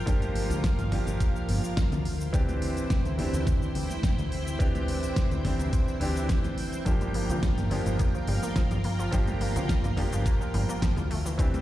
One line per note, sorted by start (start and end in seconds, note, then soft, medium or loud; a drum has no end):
0.00 2.01 F4 medium
0.00 2.01 A#4 medium
0.06 0.52 G1 medium
0.06 0.88 F3 medium
0.06 0.89 A#3 medium
0.06 0.89 D4 medium
0.06 0.89 G4 loud
0.06 2.03 F5 medium
0.06 kick loud
0.06 closed hi-hat medium
0.06 shaker medium
0.22 closed hi-hat soft
0.22 high conga medium
0.22 shaker soft
0.35 open hi-hat loud
0.50 0.71 D2 medium
0.50 closed hi-hat soft
0.50 shaker medium
0.64 kick loud
0.64 snare loud
0.64 closed hi-hat medium
0.64 shaker soft
0.79 0.99 G1 medium
0.79 closed hi-hat soft
0.79 shaker soft
0.91 2.03 F3 medium
0.91 2.03 A#3 medium
0.91 2.04 D4 medium
0.91 2.04 G4 medium
0.91 kick medium
0.91 open hi-hat medium
0.91 low conga medium
1.07 1.17 G1 medium
1.07 closed hi-hat medium
1.07 shaker medium
1.20 kick loud
1.20 closed hi-hat medium
1.20 shaker medium
1.36 shaker soft
1.49 1.60 G1 medium
1.49 open hi-hat loud
1.64 shaker medium
1.77 kick loud
1.77 snare loud
1.77 closed hi-hat medium
1.77 shaker soft
1.92 2.28 D2 medium
1.92 closed hi-hat soft
1.92 low conga medium
1.92 shaker soft
2.05 6.83 E4 medium
2.05 6.83 C5 medium
2.05 6.83 G5 medium
2.05 open hi-hat medium
2.21 shaker medium
2.33 2.77 D2 loud
2.33 3.15 E3 medium
2.33 3.15 C4 medium
2.33 3.15 D4 medium
2.33 3.16 G4 loud
2.33 kick loud
2.33 closed hi-hat medium
2.33 shaker medium
2.49 closed hi-hat soft
2.49 high conga medium
2.49 shaker soft
2.62 open hi-hat loud
2.77 2.97 A1 medium
2.77 closed hi-hat soft
2.77 shaker medium
2.90 kick loud
2.90 snare loud
2.90 closed hi-hat medium
2.90 shaker medium
3.05 3.25 D2 medium
3.05 closed hi-hat soft
3.05 shaker soft
3.18 4.56 E3 medium
3.18 4.57 C4 medium
3.18 4.57 D4 medium
3.18 4.57 G4 medium
3.18 open hi-hat medium
3.18 low conga loud
3.33 3.43 D2 medium
3.33 closed hi-hat soft
3.33 shaker medium
3.47 kick loud
3.47 closed hi-hat medium
3.47 low conga medium
3.47 shaker medium
3.62 shaker soft
3.75 3.86 D2 medium
3.75 open hi-hat loud
3.90 high conga medium
3.90 shaker medium
4.03 kick loud
4.03 snare loud
4.03 closed hi-hat medium
4.03 shaker medium
4.18 4.54 D2 medium
4.18 closed hi-hat soft
4.18 shaker soft
4.32 open hi-hat medium
4.48 shaker medium
4.59 5.03 D2 loud
4.59 5.41 E3 medium
4.59 5.42 C4 medium
4.59 5.42 D4 medium
4.59 5.42 G4 loud
4.59 kick loud
4.59 closed hi-hat medium
4.59 shaker medium
4.75 closed hi-hat soft
4.75 high conga medium
4.75 shaker soft
4.88 open hi-hat loud
5.03 5.24 A1 medium
5.03 closed hi-hat soft
5.03 shaker medium
5.16 kick loud
5.16 snare loud
5.16 closed hi-hat medium
5.16 shaker medium
5.31 5.52 D2 medium
5.31 closed hi-hat soft
5.31 shaker soft
5.44 5.99 E3 medium
5.44 5.99 C4 medium
5.44 5.99 D4 medium
5.44 5.99 G4 medium
5.44 kick medium
5.44 snare soft
5.44 open hi-hat medium
5.44 low conga medium
5.60 5.70 D2 medium
5.60 closed hi-hat soft
5.60 shaker medium
5.73 kick loud
5.73 closed hi-hat medium
5.73 shaker medium
5.88 shaker soft
6.00 6.45 D2 medium
6.00 6.83 E3 medium
6.00 6.83 C4 medium
6.00 6.83 D4 medium
6.00 6.84 G4 loud
6.00 open hi-hat loud
6.17 shaker medium
6.29 kick loud
6.29 snare loud
6.29 closed hi-hat medium
6.29 shaker medium
6.44 6.54 C2 loud
6.44 closed hi-hat soft
6.44 high conga medium
6.44 low conga medium
6.44 shaker soft
6.58 open hi-hat medium
6.73 closed hi-hat soft
6.73 shaker medium
6.85 7.31 G1 loud
6.85 7.67 F3 medium
6.85 6.95 F3 loud
6.85 7.68 A#3 medium
6.85 7.68 D4 medium
6.85 11.07 F4 medium
6.85 7.69 G4 loud
6.85 11.07 A#4 medium
6.85 11.07 G5 medium
6.85 kick loud
6.85 closed hi-hat medium
6.85 shaker medium
7.01 7.09 G3 medium
7.01 closed hi-hat soft
7.01 high conga medium
7.01 shaker soft
7.14 7.23 A#3 medium
7.14 open hi-hat loud
7.29 7.50 D2 medium
7.29 7.37 F3 medium
7.29 closed hi-hat soft
7.29 shaker medium
7.43 7.46 G3 loud
7.43 kick loud
7.43 snare loud
7.43 closed hi-hat medium
7.43 shaker medium
7.57 7.78 G1 medium
7.57 7.61 A#3 medium
7.57 closed hi-hat soft
7.57 shaker soft
7.70 9.09 F3 medium
7.70 7.77 F3 loud
7.70 9.09 A#3 medium
7.70 9.10 D4 medium
7.70 9.10 G4 medium
7.70 open hi-hat medium
7.70 low conga medium
7.86 7.96 G1 medium
7.86 7.89 F3 medium
7.86 closed hi-hat soft
7.86 shaker medium
7.99 8.08 A#3 loud
7.99 kick loud
7.99 closed hi-hat medium
7.99 low conga medium
7.99 shaker medium
8.15 8.20 F3 medium
8.15 shaker soft
8.27 8.39 G1 medium
8.27 8.36 G3 medium
8.27 open hi-hat loud
8.42 8.50 A#3 medium
8.42 high conga medium
8.42 shaker medium
8.56 8.60 F3 loud
8.56 kick loud
8.56 snare loud
8.56 closed hi-hat medium
8.56 shaker medium
8.71 9.07 G1 medium
8.71 8.74 G3 medium
8.71 closed hi-hat soft
8.71 shaker soft
8.84 8.90 A#3 medium
8.84 open hi-hat medium
8.99 9.02 F3 medium
8.99 shaker medium
9.11 9.58 G1 loud
9.11 9.94 F3 medium
9.11 9.21 F3 loud
9.11 9.94 A#3 medium
9.11 9.94 D4 medium
9.11 9.95 G4 loud
9.11 kick loud
9.11 closed hi-hat medium
9.11 shaker medium
9.27 9.35 G3 medium
9.27 closed hi-hat soft
9.27 high conga medium
9.27 shaker soft
9.41 9.49 A#3 medium
9.41 open hi-hat loud
9.56 9.76 D2 medium
9.56 9.63 F3 medium
9.56 closed hi-hat soft
9.56 shaker medium
9.69 9.73 G3 loud
9.69 kick loud
9.69 snare loud
9.69 closed hi-hat medium
9.69 shaker medium
9.84 10.05 G1 medium
9.84 9.87 A#3 medium
9.84 closed hi-hat soft
9.84 shaker soft
9.96 11.09 F3 medium
9.96 10.03 F3 loud
9.96 11.09 A#3 medium
9.96 11.09 D4 medium
9.96 11.10 G4 medium
9.96 kick medium
9.96 open hi-hat medium
9.96 low conga medium
10.12 10.22 G1 medium
10.12 10.16 F3 medium
10.12 closed hi-hat medium
10.12 shaker medium
10.26 10.34 A#3 loud
10.26 kick loud
10.26 closed hi-hat medium
10.26 shaker medium
10.41 10.46 F3 medium
10.41 shaker soft
10.54 10.65 G1 medium
10.54 10.62 G3 medium
10.54 open hi-hat medium
10.69 10.77 A#3 medium
10.69 shaker medium
10.82 10.86 F3 loud
10.82 kick loud
10.82 snare loud
10.82 closed hi-hat medium
10.82 shaker medium
10.97 11.33 D2 medium
10.97 11.00 G3 medium
10.97 closed hi-hat soft
10.97 low conga medium
10.97 shaker soft
11.11 11.16 A3 medium
11.11 11.62 E4 medium
11.11 11.62 C5 medium
11.11 11.62 G5 medium
11.11 open hi-hat medium
11.26 11.29 E3 medium
11.26 shaker medium
11.38 11.62 D2 loud
11.38 11.62 E3 medium
11.38 11.48 E3 loud
11.38 11.62 C4 medium
11.38 11.62 D4 medium
11.38 11.62 G4 loud
11.38 kick loud
11.38 closed hi-hat medium
11.38 shaker medium
11.54 11.61 G3 medium
11.54 closed hi-hat soft
11.54 high conga medium
11.54 shaker soft